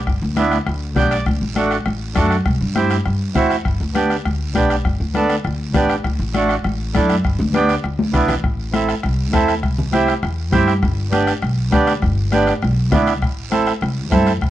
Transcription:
0.07 G1, bombo low, bombo rim, high conga, long guiro
0.22 D2
0.37 B3 D4 E4, bombo rim, high conga, short guiro
0.52 bombo rim, short guiro
0.67 D2, bombo rim, high conga, long guiro
0.96 B1 B3 D4 G4 G5, bombo low, bombo rim, high conga, low conga, short guiro
1.11 D5, bombo rim, short guiro
1.26 D2, bombo low, bombo rim, high conga, long guiro
1.42 A1
1.55 A3 D4 F#4, bombo rim, high conga, short guiro
1.71 bombo rim, short guiro
1.86 A1, bombo rim, high conga, long guiro
2.15 F#2 A3 D4 F#4, bombo low, bombo rim, high conga, short guiro
2.31 bombo rim, short guiro
2.45 C2, bombo low, bombo rim, high conga, long guiro
2.61 G2
2.75 C4 E4 G4, bombo rim, high conga, short guiro
2.90 bombo rim, short guiro
3.05 G2, bombo rim, high conga, long guiro
3.35 E2 C4 E4 F#4, bombo low, bombo rim, high conga, low conga, short guiro
3.50 bombo rim, short guiro
3.65 G1, bombo low, bombo rim, high conga, long guiro
3.81 D2
3.95 B3 D4 G4, bombo rim, high conga, short guiro
4.10 bombo rim, short guiro
4.25 D2, bombo rim, high conga, long guiro
4.55 B1 B3 D4 G4, bombo low, bombo rim, high conga, short guiro
4.70 bombo rim, short guiro
4.85 G1, bombo low, bombo rim, high conga, long guiro
5.00 D2
5.15 B3 D4 A4, bombo rim, high conga, short guiro
5.30 bombo rim, short guiro
5.44 D2, bombo rim, high conga, long guiro
5.74 A1 B3 D4 G4, bombo low, bombo rim, high conga, low conga, short guiro
5.89 bombo rim, short guiro
6.05 D2, bombo low, bombo rim, high conga, long guiro
6.19 A1
6.34 A3 D4 F#4, bombo rim, high conga, short guiro
6.49 bombo rim, short guiro
6.64 A1, bombo rim, high conga, long guiro
6.94 F#2 A3 D4 E4, bombo low, bombo rim, high conga, short guiro
7.09 bombo rim, short guiro
7.24 G1, bombo low, bombo rim, high conga, long guiro
7.38 D2, low conga
7.53 B3 D4 G4, bombo rim, high conga, short guiro
7.69 bombo rim, short guiro
7.84 D2, bombo rim, high conga, long guiro
7.99 high conga
8.13 B1 B3 D4 E4, bombo low, bombo rim, low conga, short guiro
8.28 bombo rim, low conga, short guiro
8.43 A1, bombo low, bombo rim, high conga, long guiro
8.73 C4 E4 A4, bombo rim, high conga, short guiro
8.89 bombo rim, short guiro
9.03 C2, bombo rim, high conga, long guiro
9.33 E2 C4 E4 A4, bombo low, bombo rim, high conga, short guiro
9.48 bombo rim, short guiro
9.63 C2, bombo low, bombo rim, high conga
9.78 low conga
9.92 C4 E4 G4, bombo rim, high conga, short guiro
10.08 bombo rim, short guiro
10.23 E2, bombo rim, high conga, long guiro
10.52 G2 C4 E4 G4, bombo low, bombo rim, high conga, low conga, short guiro
10.68 bombo rim, short guiro
10.82 G1, bombo low, bombo rim, high conga, long guiro
11.11 B3 D4 G4, bombo rim, high conga, short guiro
11.27 bombo rim, short guiro
11.42 B1, bombo rim, high conga, long guiro
11.71 D2 B3 D4 G4, bombo low, bombo rim, high conga, short guiro
11.87 bombo rim, short guiro
12.02 G1, bombo low, bombo rim, high conga, long guiro
12.32 B3 D4 G4, bombo rim, high conga, short guiro
12.47 bombo rim, short guiro
12.62 B1, bombo rim, high conga, long guiro
12.92 D2 B3 D4 E4, bombo low, bombo rim, high conga, low conga, short guiro
13.07 bombo rim, short guiro
13.22 A1, bombo low, bombo rim, high conga, long guiro
13.51 C4 E4 A4, bombo rim, high conga, short guiro
13.66 bombo rim, short guiro
13.81 C2, bombo rim, high conga, long guiro
14.11 G2 C4 E4 A4, bombo low, bombo rim, high conga, short guiro
14.27 bombo rim, short guiro
14.42 C2, bombo low, bombo rim, high conga, long guiro

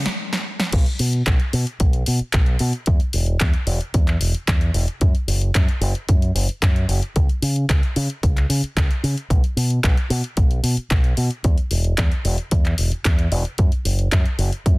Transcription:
0.06 muted fingered electric bass stroke, snare, closed hi-hat
0.33 snare
0.60 snare
0.73 B1, kick, closed hi-hat, crash
0.86 closed hi-hat
0.99 B2, open hi-hat
1.13 closed hi-hat
1.26 B1, kick, clap, closed hi-hat
1.40 closed hi-hat
1.53 B2, open hi-hat
1.67 closed hi-hat
1.80 B1, kick, closed hi-hat
1.93 closed hi-hat
2.06 B2, open hi-hat
2.19 muted fingered electric bass stroke, closed hi-hat
2.33 B1, kick, clap, closed hi-hat
2.46 closed hi-hat
2.59 B2, open hi-hat
2.73 closed hi-hat
2.86 E2, kick, closed hi-hat
3.00 closed hi-hat
3.13 E1, open hi-hat
3.26 closed hi-hat
3.40 E2, kick, clap, closed hi-hat
3.54 closed hi-hat
3.67 E1, open hi-hat
3.81 closed hi-hat
3.94 E2, kick, closed hi-hat
4.08 clap, closed hi-hat
4.20 E1, open hi-hat
4.33 muted fingered electric bass stroke, closed hi-hat
4.48 E2, kick, clap, closed hi-hat
4.61 closed hi-hat
4.74 E1, open hi-hat
4.88 closed hi-hat
5.01 F#2, kick, closed hi-hat
5.15 closed hi-hat
5.28 F#1, open hi-hat
5.42 closed hi-hat
5.55 F#2, kick, clap, closed hi-hat
5.69 closed hi-hat
5.81 F#1, open hi-hat
5.95 closed hi-hat
6.09 F#2, kick, closed hi-hat
6.22 closed hi-hat
6.35 F#1, open hi-hat
6.49 muted fingered electric bass stroke, closed hi-hat
6.62 F#2, kick, clap, closed hi-hat
6.76 closed hi-hat
6.88 F#1, open hi-hat
7.03 closed hi-hat
7.16 C#2, kick, closed hi-hat
7.29 closed hi-hat
7.42 C#3, open hi-hat
7.56 closed hi-hat
7.69 C#2, kick, clap, closed hi-hat
7.83 closed hi-hat
7.96 C#3, open hi-hat
8.10 closed hi-hat
8.23 C#2, kick, closed hi-hat
8.37 clap, closed hi-hat
8.49 C#3, open hi-hat
8.63 muted fingered electric bass stroke, closed hi-hat
8.77 C#2, kick, clap, closed hi-hat
8.91 closed hi-hat
9.03 C#3, open hi-hat
9.18 closed hi-hat
9.30 B1, kick, closed hi-hat
9.44 closed hi-hat
9.57 B2, open hi-hat
9.70 closed hi-hat
9.84 B1, kick, clap, closed hi-hat
9.97 closed hi-hat
10.10 B2, open hi-hat
10.24 closed hi-hat
10.37 B1, kick, closed hi-hat
10.51 closed hi-hat
10.63 B2, open hi-hat
10.77 muted fingered electric bass stroke, closed hi-hat
10.91 B1, kick, clap, closed hi-hat
11.04 closed hi-hat
11.17 B2, open hi-hat
11.31 closed hi-hat
11.44 E2, kick, closed hi-hat
11.58 closed hi-hat
11.71 E1, open hi-hat
11.84 closed hi-hat
11.98 E2, kick, clap, closed hi-hat
12.12 closed hi-hat
12.25 E1, open hi-hat
12.38 closed hi-hat
12.51 E2, kick, closed hi-hat
12.65 clap, closed hi-hat
12.78 E1, open hi-hat
12.92 muted fingered electric bass stroke, closed hi-hat
13.05 E2, kick, clap, closed hi-hat
13.19 closed hi-hat
13.32 E1, open hi-hat
13.45 closed hi-hat
13.58 F#2, kick, closed hi-hat
13.72 closed hi-hat
13.85 F#1, open hi-hat
13.99 closed hi-hat
14.12 F#2, kick, clap, closed hi-hat
14.26 closed hi-hat
14.38 F#1, open hi-hat
14.53 closed hi-hat
14.66 F#2, kick, closed hi-hat

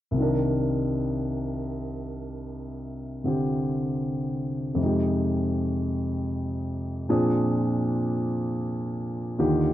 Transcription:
0.11 C2 C3
0.17 D#3 D4
0.22 A#4
3.24 C3 D3 C4 G4
4.75 F2 C3
4.80 G#3 D#4
4.86 G4
7.09 A#2 F3 C4 D4 G#4
9.38 D#2 D3 D#3 F4 G4

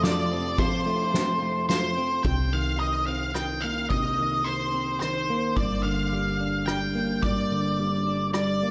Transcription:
Already playing: F2 C3 F3 A3 C4 F4 A4
0.04 F4 D5, snare, ride
0.31 C4
0.58 F2 C5, kick, ride
0.86 A3, ride
1.14 C4, snare, ride
1.42 A3
1.69 F4 C5, snare, ride
1.97 C4
2.23 C2 C3 G5, kick, ride
2.53 D#3 F5
2.80 D#3 D#5, ride
3.06 C4 F5
3.34 D#3 G5, cross-stick, ride
3.61 A#3 F5, ride
3.90 C3 D#5, kick, ride
4.19 D#3
4.44 D#3 C5, ride
4.74 C4
5.00 D#3 C5, cross-stick, ride
5.30 A#3
5.56 G1 G2 D5, kick, ride
5.83 D3 F5
6.12 G3, ride
6.40 D4
6.66 G3 G5, cross-stick, ride
6.95 A#3, ride
7.22 G2 D5, kick, ride
7.51 D3
7.79 G3, ride
8.07 D4
8.33 G3 D5, cross-stick, ride
8.63 A#3

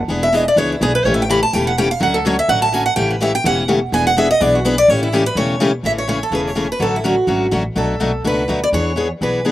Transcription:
0.08 E1 E3 B3 D4 G#4
0.23 E5
0.33 E3 B3 D4 G#4 D#5
0.48 D5
0.56 C#2 E3 B3 D4 G#4 C#5
0.72 E4
0.81 B1 E3 B3 D4 G#4
0.95 B4
1.05 A1 C#3 E3 A3 C#4 G4 C#5
1.14 E5
1.22 G5
1.29 C#3 E3 A3 C#4 G4 B5
1.43 A5
1.53 E1 C#3 E3 A3 C#4 G4 G5
1.67 F#5
1.78 C#3 E3 A3 C#4 G4 G5
1.91 F5
2.00 D2 D3 F#3 A3 C#4 F#4 F#5
2.14 A4
2.25 D3 F#3 A3 C#4 F#4 C#5
2.39 E5
2.48 A1 D3 F#3 A3 C#4 F#4 F#5
2.62 A5
2.72 D3 F#3 A3 C#4 F#4 G#5
2.86 F#5
2.96 A1 C#3 E3 A3 C#4 G4 G5
3.10 B4
3.21 C#3 E3 A3 C#4 G4 E5
3.35 G5
3.44 E1 C#3 E3 A3 C#4 G4 F#5
3.68 C#3 E3 A3 C#4 G4
3.92 E1 E3 B3 D4 G#4 G#5
4.07 F#5
4.16 E3 B3 D4 G#4 E5
4.31 D#5
4.40 B1 E3 B3 D4 G#4 D5
4.55 F#4
4.65 E3 B3 D4 G#4 B4
4.78 D5
4.88 A1 C#3 E3 A3 C#4 G4 C#5
5.03 E4
5.13 C#3 E3 A3 C#4 G4
5.26 B4
5.35 E1 C#3 E3 A3 C#4 G4 C#5
5.60 C#3 E3 A3 C#4 G4
5.83 A1 C#3 E3 A3 C#4 G#4 E5
5.98 C#5
6.08 C#3 E3 A3 C#4 G#4 C#5
6.23 A4
6.31 E1 C#3 E3 A3 C#4 G#4 B4
6.47 C#5
6.55 C#3 E3 A3 C#4 G#4
6.72 B4
6.79 A1 D3 F#3 A3 C#4 F#4 A4
6.96 E4
7.04 D3 F#3 A3 C#4 F#4
7.27 G#1 D3 F#3 A3 C#4 F#4
7.51 A1 D3 F#3 A3 C#4 F#4
7.75 B1 B2 F#3 A3 D4 F#4 A4
8.00 B1 B2 F#3 A3 D4 F#4
8.24 C#2 B2 F#3 A3 D4 F#4 B4
8.48 D2 B2 F#3 A3 D4 F#4
8.64 D5
8.72 E2 E3 B3 D4 G#4 C#5
8.96 E3 B3 D4 G#4
9.21 B1 E3 B3 D4 G#4 B4
9.45 E3 B3 D4 G#4

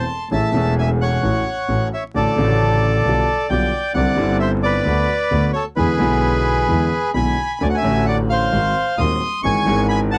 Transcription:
Already playing: A5 C6
0.31 A1 A2 E3 A3 C#4 G#4 E5 A5
0.52 E1 E2 E3 A3 C#4
0.56 G#4
0.79 E5 G#5
1.01 C#5 F#5
1.23 A1 A2 E3 A3 C#4 F#4
1.69 A1 A2 E3 A3 C#4 F#4
1.93 C#5 E5
2.14 A1 A2 D3 A3 C#4 F#4 A4 D5
2.36 A1 A2 C#3 D3 A3
2.40 F#4
3.05 B1 B2 D3 G3 B3 F4
3.50 B1 B2 D3 G3 B3 F4 D5 G5
3.94 C2 C3 D3 G3 C4 E4 D5 F#5
4.15 G1 G2 D3 G3 C4 E4
4.40 C5 E5
4.63 B4 D5
4.85 D2 D3 A3 B3 F#4
5.31 D2 D3 A3 B3 F#4
5.53 A4 C#5
5.76 E2 D3 E3 G#3 B3 E4 G#4 B4
5.98 B1 B2 D3 G#3 B3 E4
6.68 E2 D3 E3 G#3 B3 E4
7.14 B1 B2 D3 G#3 B3 E4 G#5 B5
7.60 D2 D3 A3 C#4 F#4 D5 G#5
7.69 F#5
7.75 E5 G#5
7.82 A1 A2 D3 A3 C#4
7.86 F#4
8.06 D5 F#5
8.30 C5 F5
8.52 G#1 G#2 D#3 G#3 C4 F#4
8.98 D#1 D#2 D#3 G#3 C4 F#4 C6 D#6
9.43 G#1 G#2 E3 G#3 C#4 G#4 G#5 C#6
9.65 G#1 G#2 E3 G#3 C#4
9.69 G#4
9.88 G#5 B5
10.11 F#5 A5

